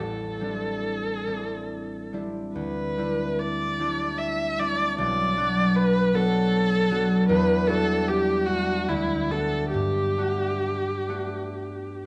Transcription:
Already playing: harp A1 G3 B3 D4 E4
0.00 viola A4
0.39 harp G3 C4 D4 E4
1.27 harp G3 C4 D4 E4
2.13 harp G3 C4 D4 E4
2.55 harp D2, viola B4
2.97 harp G3 C4 D4 E4
3.39 viola D5
3.79 harp G3 C4 D4 E4
4.18 viola E5
4.59 harp G3 C4 D4 E4, viola D5
4.98 harp B1, viola D5
5.37 harp F#3 B3 D4 F#4
5.76 viola B4
6.13 harp F#3 B3 D4 F#4, viola A4
6.90 harp F#3 B3 D4 F#4
7.29 harp E2, viola B4
7.67 harp G3 A3 D4 F#4, viola A4
8.08 viola G4
8.46 harp G3 A3 D4 F#4, viola F#4
8.88 harp D2, viola E4
9.31 harp A3 B3 D4 F#4, viola A4
9.73 harp G2, viola G4
10.17 harp A3 B3 D4 F#4
11.08 harp A3 B3 D4 F#4

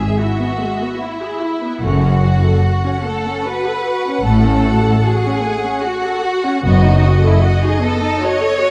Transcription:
Already playing: violin section G#4 E5
0.00 viola section G#4
0.19 viola section E4, violin section F#4
0.41 viola section B3
0.61 viola section G#3
0.81 viola section B3
1.02 viola section E4, violin section E4
1.23 viola section G#4
1.43 viola section E4
1.64 viola section B3
1.83 double bass section F#1, cello section F#2, viola section A3 C#4, violin section F#4 F#5
2.05 viola section C#4
2.25 viola section F#4
2.44 viola section A4
2.65 viola section F#4
2.85 viola section C#4
3.05 viola section A3, violin section A4
3.27 viola section C#4
3.44 viola section F#4, violin section B4
3.67 viola section A4
3.87 viola section F#4
4.07 viola section C#4
4.24 double bass section A1, cello section A2, viola section A3, violin section A4
4.46 viola section C#4
4.66 viola section F#4
4.86 viola section A4
5.05 viola section F#4, violin section G#4
5.26 viola section C#4
5.44 viola section A3
5.64 viola section C#4
5.84 violin section F#4, viola section F#4
6.04 viola section A4
6.25 viola section F#4
6.44 viola section C#4
6.64 double bass section F#1, cello section F#2, viola section B3, violin section F#4 D#5
6.84 viola section D#4
7.04 viola section F#4
7.24 violin section E4, viola section A4
7.43 viola section F#4, violin section F#4
7.63 viola section D#4, violin section G#4
7.81 viola section B3, violin section A4
8.02 viola section D#4
8.21 viola section F#4, violin section C#5
8.42 viola section A4
8.63 viola section F#4

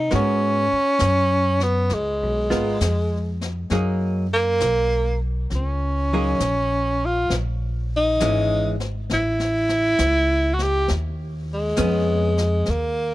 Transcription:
Already playing: tenor saxophone D#4
0.10 upright bass G#2, hollow-body jazz guitar G#3 B3 F#4 A#4, brush sweep, snare
0.15 tenor saxophone C#4
0.72 muted upright bass stroke
0.99 upright bass F#2, snare, hi-hat pedal
1.60 tenor saxophone B3, snare
1.89 upright bass C#2, brush sweep, snare
1.94 tenor saxophone G#3
2.22 upright bass B1
2.50 upright bass G#1, hollow-body jazz guitar B3 F4 A#4, snare
2.81 upright bass F2, snare, hi-hat pedal
3.41 snare
3.70 upright bass F#2, hollow-body jazz guitar F#3 A#3 D#4 G#4, brush sweep, snare
4.33 tenor saxophone A#3
4.60 upright bass B1, snare, hi-hat pedal
5.50 upright bass C#2, brush sweep, snare
5.55 tenor saxophone C#4
6.13 hollow-body jazz guitar F#3 A#3 D#4 G#4
6.40 upright bass A#1, snare, hi-hat pedal
7.05 tenor saxophone F4
7.30 upright bass A#1, brush sweep, snare
7.96 tenor saxophone D#4
8.20 upright bass G#1, hollow-body jazz guitar E3 G#3 C#4, snare, hi-hat pedal
8.80 snare
9.10 upright bass A1, tenor saxophone E4, brush sweep, snare
9.39 snare
9.69 snare
9.98 upright bass C#2, snare, hi-hat pedal
10.54 tenor saxophone F#4
10.59 tenor saxophone G4, snare
10.88 upright bass D#2, brush sweep, snare
11.54 tenor saxophone G#3
11.76 upright bass F2, hollow-body jazz guitar B3 C#4, snare, hi-hat pedal
12.37 snare
12.65 upright bass D#2, brush sweep, snare
12.70 tenor saxophone A#3

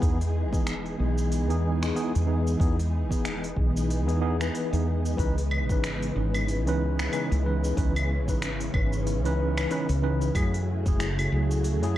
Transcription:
Already playing: string machine E3 G#3 B3 D#4 G#4
0.00 fretless electric bass E2, tine electric piano E3 B3 D#4 G#4, kick, open hi-hat, cabasa
0.21 open hi-hat, cabasa
0.52 fretless electric bass E1, tine electric piano E3 B3 D#4 G#4, kick, cabasa
0.67 finger snap, open hi-hat, cabasa
0.86 open hi-hat, cabasa
0.98 fretless electric bass B1, tine electric piano E3 B3 D#4 G#4
1.18 cabasa
1.32 open hi-hat, cabasa
1.48 fretless electric bass E2, tine electric piano E3 B3 D#4 G#4, open hi-hat, cabasa
1.82 finger snap, cabasa
1.95 tine electric piano E3 B3 D#4 G#4, open hi-hat, cabasa
2.15 fretless electric bass E2, open hi-hat, cabasa
2.26 tine electric piano E3 B3 D#4 G#4
2.47 cabasa
2.59 fretless electric bass E2, tine electric piano E3 B3 D#4 G#4, kick, open hi-hat, cabasa
2.80 open hi-hat, cabasa
3.10 fretless electric bass E1, tine electric piano E3 B3 D#4 G#4, kick, open hi-hat, cabasa
3.25 finger snap, open hi-hat, cabasa
3.44 open hi-hat, cabasa
3.57 fretless electric bass B1, tine electric piano E3 B3 D#4 G#4, kick
3.77 cabasa
3.90 open hi-hat, cabasa
4.07 fretless electric bass E2, tine electric piano E3 B3 D#4 G#4, open hi-hat, cabasa
4.21 tine electric piano E3 B3 D#4 G#4
4.40 tine electric piano E3 B3 D#4 B4, finger snap, cabasa
4.55 open hi-hat, cabasa
4.72 fretless electric bass E2, tine electric piano E3 B3 D#4 G#4, open hi-hat, cabasa
5.06 cabasa
5.17 fretless electric bass C#2, string machine C#3 E3 G#3, tine electric piano E3 C#4 D#4 B4, kick, open hi-hat, cabasa
5.38 open hi-hat, cabasa
5.51 claves
5.69 fretless electric bass G#1, tine electric piano E3 C#4 D#4 B4, kick, cabasa
5.84 finger snap, open hi-hat, cabasa
6.02 open hi-hat, cabasa
6.16 fretless electric bass G#1, tine electric piano E3 C#4 D#4 B4
6.34 cabasa, claves
6.48 open hi-hat, cabasa
6.66 fretless electric bass C#2, tine electric piano E3 C#4 D#4 B4, open hi-hat, cabasa
6.99 finger snap, cabasa
7.12 tine electric piano E3 C#4 D#4 B4, open hi-hat, cabasa, claves
7.31 fretless electric bass C#2, open hi-hat, cabasa
7.44 tine electric piano E3 C#4 D#4 B4
7.64 cabasa
7.75 fretless electric bass C#2, tine electric piano E3 C#4 D#4 B4, string machine C#4, kick, open hi-hat, cabasa
7.96 open hi-hat, cabasa, claves
8.28 fretless electric bass G#1, tine electric piano E3 C#4 D#4 B4, kick, cabasa
8.42 finger snap, open hi-hat, cabasa
8.61 open hi-hat, cabasa
8.74 fretless electric bass G#1, tine electric piano E3 C#4 D#4 B4, kick, claves
8.93 cabasa
9.07 open hi-hat, cabasa
9.25 fretless electric bass C#2, tine electric piano E3 C#4 D#4 B4, open hi-hat, cabasa
9.58 finger snap, cabasa, claves
9.70 tine electric piano E3 C#4 D#4 B4, open hi-hat, cabasa
9.89 fretless electric bass C#2, open hi-hat, cabasa
10.02 tine electric piano E3 C#4 D#4 B4
10.22 cabasa
10.34 fretless electric bass F#2, tine electric piano F#3 A3 E4 G#4, string machine A3 E4 F#4 G#4, kick, open hi-hat, cabasa, claves
10.54 open hi-hat, cabasa
10.86 fretless electric bass F#1, tine electric piano F#3 A3 E4 G#4, kick, cabasa
11.00 finger snap, open hi-hat, cabasa
11.19 open hi-hat, cabasa, claves
11.32 fretless electric bass C#2, tine electric piano F#3 A3 E4 G#4
11.51 cabasa
11.64 open hi-hat, cabasa
11.82 fretless electric bass F#2, tine electric piano F#3 A3 E4 G#4, open hi-hat, cabasa

